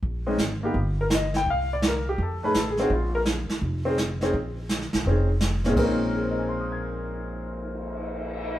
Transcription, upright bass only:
X:1
M:4/4
L:1/8
Q:"Swing" 1/4=167
K:Bbm
V:1 name="Upright bass" clef=bass
B,,,2 A,,,2 =G,,,4 | C,,4 F,,2 =A,,,2 | B,,,3 z F,,,4 | B,,,3 _C,, F,,,4 |
B,,,8- | B,,,8 |]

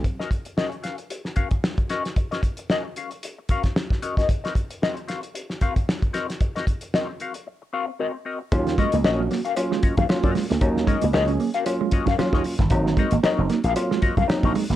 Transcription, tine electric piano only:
X:1
M:4/4
L:1/16
Q:"Swing 16ths" 1/4=114
K:Ebdor
V:1 name="Tine electric piano"
[G,C] z12 z3 | z16 | z16 | z16 |
[G,B,DF]2 z2 [G,B,DG]2 z2 [G,B,DF]2 z2 [G,B,DF]2 z2 | [G,B,DE]2 z2 [G,B,DA]2 z2 [G,B,DF]2 z2 [G,B,DF]2 z2 | [G,B,CE]2 z2 [G,B,CE]2 z2 [G,B,CF]2 z2 [G,B,CE]2 z2 |]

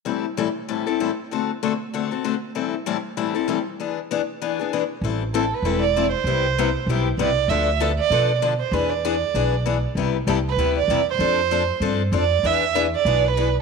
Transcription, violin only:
X:1
M:4/4
L:1/8
Q:"Swing" 1/4=194
K:Ador
V:1 name="Violin"
z8 | z8 | z8 | z8 |
[K:Am] z2 A B2 d2 c- | c4- c z d2 | e2 z d3 z c | B d6 z |
z2 A B2 d2 c- | c4- c z d2 | e2 z d2 B2 z |]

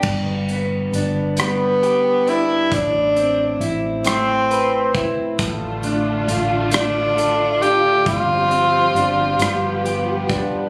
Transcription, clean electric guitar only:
X:1
M:6/8
L:1/8
Q:3/8=45
K:Gmix
V:1 name="Clean electric guitar"
G,, B, D G, G D | A,, C E A, B E | A,, D F A, A F | G,, C D G,, G D |]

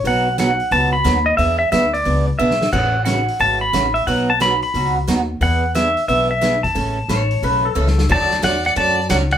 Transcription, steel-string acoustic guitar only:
X:1
M:4/4
L:1/16
Q:"Swing" 1/4=179
K:A
V:1 name="Steel-string acoustic guitar"
[B,,F,B,^DF]2 z2 [B,,F,B,DF] z3 [B,,F,B,DF]2 z2 [B,,F,B,DF] z3 | [E,B,DG]2 z2 [E,B,DG] z3 [E,B,DG]2 z2 [E,B,DG] z3 | [C,E,A,CF]2 z2 [C,E,A,CF] z3 [C,E,A,CF]2 z2 [C,E,A,CF] z3 | [B,,F,B,^DF]2 z2 [B,,F,B,DF] z3 [B,,F,B,DF]2 z2 [B,,F,B,DF] z3 |
[E,B,DG]2 z2 [E,B,DG] z3 [E,B,DG]2 z2 [E,B,DG] z3 | [C,E,A,CA]2 z2 [C,E,A,CA] z3 [C,E,A,CA]2 z2 [C,E,A,CA] z3 | [D,F,A,CF]2 z2 [D,F,A,CF] z3 [D,F,A,CF]2 z2 [D,F,A,CF] z3 |]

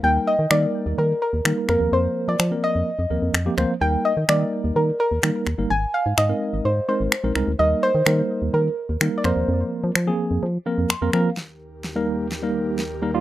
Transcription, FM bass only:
X:1
M:4/4
L:1/16
Q:1/4=127
K:Eb
V:1 name="FM bass" clef=bass
E,,2 z E, E,2 z E,, E,2 z E,, E, z F,, E,, | F,,2 z F, F,2 z F,, z F,, E,, F,, F,,2 D,, z | E,,2 z E, E,2 z E,, E,2 z E,, E, z E,, G,,, | A,,,2 z A,, A,,2 z A,,, A,,2 z A,,, z B,,, C,, D,, |
E,,2 z E, E,2 z E,, E,2 z E,, E, z F,, E,, | F,,2 z F, F,2 z F,, F,2 z F,, F,, F,, F,2 | z16 |]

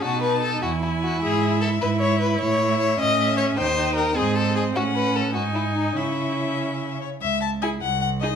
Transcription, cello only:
X:1
M:6/8
L:1/8
Q:3/8=101
K:E
V:1 name="Cello" clef=bass
B,,3 E,,3 | G,,3 G,,3 | [K:C#m] A,,3 A,,3 | D,,3 G,,3 |
A,,3 G,,3 | C,4- C, z | C,,3 ^B,,,3 |]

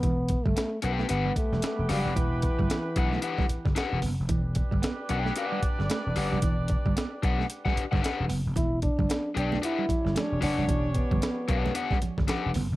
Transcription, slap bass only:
X:1
M:4/4
L:1/16
Q:"Swing 16ths" 1/4=112
K:Edor
V:1 name="Slap bass" clef=bass
E,,,3 G,,, z2 B,,,2 G,,,2 z E,,, z E,,, F,,, =F,,, | E,,,3 G,,, z2 B,,,2 z3 G,,, z E,,, F,,, =F,,, | E,,,3 G,,, z2 B,,,2 z3 G,,, z E,,, F,,, =F,,, | E,,,3 G,,, z2 B,,,2 z3 G,,, z E,,, F,,, =F,,, |
E,,,3 G,,, z2 B,,,2 z3 G,,, z E,,, F,,, =F,,, | E,,,3 G,,, z2 B,,,2 z3 G,,, z E,,, F,,, =F,,, |]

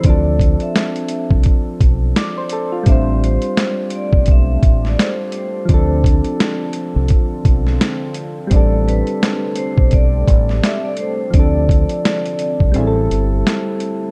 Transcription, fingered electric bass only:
X:1
M:4/4
L:1/16
Q:"Swing 16ths" 1/4=85
K:Am
V:1 name="Fingered electric bass" clef=bass
D,,3 z4 C,, z2 B,,,2 z4 | A,,,3 z4 B,,,3 A,,,2 z4 | D,,3 z4 C,, z2 B,,,2 z4 | A,,,3 z4 B,,,3 A,,,2 z4 |
D,,3 z4 C,, A,,,2 G,,,2 z4 |]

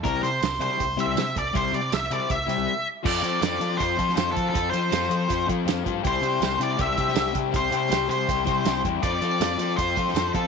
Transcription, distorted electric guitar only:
X:1
M:4/4
L:1/8
Q:1/4=160
K:F
V:1 name="Distorted electric guitar"
[G,CE] z2 [G,CE] z [G,CE] z2 | [G,CE] z2 [G,CE] z [G,CE] z2 | [F,CFA] [F,CFA] [F,CFA] [F,CFA] [F,CFA] [F,CFA] [F,CFA] [F,CFA] | [F,CFA] [F,CFA] [F,CFA] [F,CFA] [F,CFA] [F,CFA] [F,CFA] [F,CFA] |
[G,CEG] [G,CEG] [G,CEG] [G,CEG] [G,CEG] [G,CEG] [G,CEG] [G,CEG] | [G,CEG] [G,CEG] [G,CEG] [G,CEG] [G,CEG] [G,CEG] [G,CEG] [G,CEG] | [CFA] [CFA] [CFA] [CFA] [CFA] [CFA] [CFA] [CFA] |]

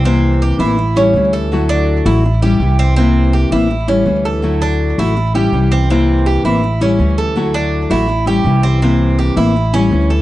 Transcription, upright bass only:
X:1
M:4/4
L:1/8
Q:1/4=164
K:Amix
V:1 name="Upright bass" clef=bass
=C,,3 A,,,3 D,,2- | D,,3 A,,,3 =C,,2- | =C,,3 A,,,3 D,,2- | D,,3 A,,,3 =C,,2- |
=C,,3 A,,,3 D,,2- | D,,3 A,,,3 =C,,2- | =C,,3 A,,,3 D,,2 |]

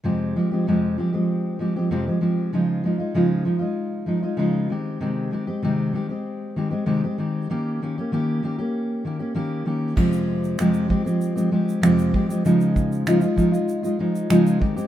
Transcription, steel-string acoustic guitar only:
X:1
M:4/4
L:1/16
Q:1/4=97
K:Fm
V:1 name="Steel-string acoustic guitar"
[F,,C,F,A,CG]2 [F,A,CG] [F,A,CG] [F,,C,F,A,CG]2 [F,A,CG] [F,A,CG]3 [F,A,CG] [F,A,CG] [F,,C,F,A,CG] [F,A,CG] [F,A,CG]2 | [D,F,A,EF]2 [F,A,EF] [A,EF] [D,F,A,EF]2 [F,A,EF] [A,EF]3 [F,A,EF] [A,EF] [D,F,A,EF]2 [E,A,CG]2 | [C,E,A,CG]2 [E,A,CG] [A,CG] [C,E,A,CG]2 [E,A,CG] [A,C]3 [E,A,CG] [A,CG] [C,E,A,CG] [A,CG] [E,A,CG]2 | [E,B,DG]2 [E,B,DG] [B,DG] [E,B,DG]2 [E,B,DG] [B,DG]3 [E,B,DG] [B,DG] [E,B,DG]2 [E,B,DG]2 |
[F,,C,F,A,CG]4 [F,,C,F,A,CG]2 [F,A,CG] [F,A,CG]2 [F,A,CG] [F,A,CG]2 [F,,C,F,A,CG]2 [F,A,CG] [F,A,CG] | [D,F,A,EF]4 [D,F,A,EF] [A,EF] [F,A,EF] [A,EF]2 [A,EF] [F,A,EF]2 [D,F,A,EF]2 [E,A,CG] [A,CG] |]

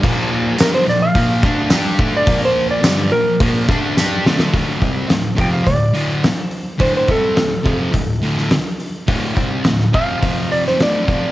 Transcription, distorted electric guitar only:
X:1
M:4/4
L:1/8
Q:1/4=106
K:Dm
V:1 name="Distorted electric guitar" clef=bass
[B,,F,B,]2 [G,,D,G,] [B,,F,] [B,,F,B,] [D,A,D] [G,DG] [D,A,D] | [B,,F,B,]2 [G,,D,G,] [B,,F,] [B,,F,B,] [D,A,D] [G,DG] [D,A,D] | [D,,A,,D,] [C,G,C] [D,,A,,] [F,,C,F,] [D,,A,,] [D,,A,,D,] z2 | [D,,A,,D,] [C,G,C] [D,,A,,] [F,,C,F,] [D,,A,,] [D,,A,,D,] z2 |
[D,,A,,D,] [C,G,C] [D,,A,,] [F,,C,F,] [F,,C,F,]2 [D,,A,,D,] [F,,C,F,] |]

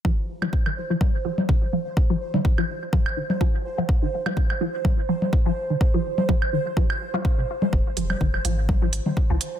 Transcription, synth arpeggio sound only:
X:1
M:4/4
L:1/16
Q:"Swing 16ths" 1/4=125
K:Fm
V:1 name="Synth arpeggio sound" clef=bass
F, z2 F, z E, z F, z2 F, z E, z F, z | z F, z E, z F, z2 F, z E, z F, z2 F, | z E, z F, z2 F, z E, z F, z2 F, z E, | z F, z2 F, z E, z F, z2 F z C, z A, |
z2 F, z E, z F, z2 F, z E, z F, z2 |]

